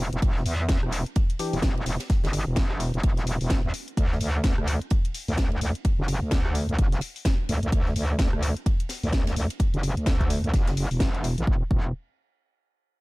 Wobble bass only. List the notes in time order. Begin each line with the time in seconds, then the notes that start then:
0.00 E1
0.13 E1
0.22 E1
0.46 E2
0.83 E1
1.53 E1
1.86 E1
2.24 G1
2.47 E1
2.94 E1
3.04 E1
3.41 E1
3.64 E2
3.97 D2
4.21 D2
4.58 D2
5.28 D2
5.61 D2
5.99 F#1
6.22 D2
6.69 D2
6.79 F#1
7.49 D2
7.63 D2
7.72 D2
7.96 D2
8.33 D2
9.03 D2
9.36 D2
9.74 F#1
9.97 D2
10.44 D2
10.54 F#1
10.91 E1
11.38 A1
11.47 E1
11.71 E1